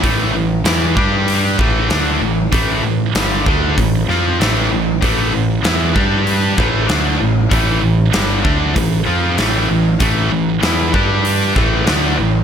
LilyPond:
<<
  \new Staff \with { instrumentName = "Distorted electric guitar" } { \clef bass \time 4/4 \key g \mixolydian \tempo 4 = 96 <a, e a>8 <a, e>8 <e b e'>8 <g d' g'>4 <a, e a>8 <d a d'>8 <a, e>8 | <a, e a>8 <a, e>8 <g, d g>8 <d a d'>8 <a, e>8 <f c' f'>8 <a, e a>8 <a, e>8 | <a, e a>8 <a, e>8 <e b e'>8 <g d' g'>4 <a, e a>8 <d a d'>8 <a, e>8 | <a, e a>8 <a, e>8 <g, d g>8 <d a d'>8 <a, e>8 <f c' f'>8 <a, e a>8 <a, e>8 |
<a, e a>8 <a, e>8 <e b e'>8 <g d' g'>4 <a, e a>8 <d a d'>8 <a, e>8 | }
  \new Staff \with { instrumentName = "Distorted electric guitar" } { \clef bass \time 4/4 \key g \mixolydian <a, e a>8 <a, e>8 <e b e'>8 <g d' g'>4 <a, e a>8 <d a d'>8 <a, e>8 | <a, e a>8 <a, e>8 <g, d g>8 <d a d'>8 <a, e>8 <f c' f'>8 <a, e a>8 <a, e>8 | <a, e a>8 <a, e>8 <e b e'>8 <g d' g'>4 <a, e a>8 <d a d'>8 <a, e>8 | <a, e a>8 <a, e>8 <g, d g>8 <d a d'>8 <a, e>8 <f c' f'>8 <a, e a>8 <a, e>8 |
<a, e a>8 <a, e>8 <e b e'>8 <g d' g'>4 <a, e a>8 <d a d'>8 <a, e>8 | }
  \new Staff \with { instrumentName = "Picked electric bass" } { \clef bass \time 4/4 \key g \mixolydian a,,8 a,,8 e,8 g,4 a,,8 d,8 a,,8 | a,,8 a,,8 g,,8 d,8 a,,8 f,8 a,,8 a,,8 | a,,8 a,,8 e,8 g,4 a,,8 d,8 a,,8 | a,,8 a,,8 g,,8 d,8 a,,8 f,8 a,,8 a,,8 |
a,,8 a,,8 e,8 g,4 a,,8 d,8 a,,8 | }
  \new DrumStaff \with { instrumentName = "Drums" } \drummode { \time 4/4 <hho bd>4 <hho sn>8 bd8 hho8 bd8 <hho sn>4 | <hho bd>4 <hho sn>8 bd8 <hho bd>8 sn8 <hho sn>4 | <hho bd>4 <hho sn>8 bd8 hho8 <bd sn>8 <hho sn>4 | <hho bd>4 <hho sn>8 bd8 <hho bd>4 <hho sn>4 |
<hho bd>4 <hho sn>8 bd8 hho8 <bd sn>8 <hho sn>4 | }
>>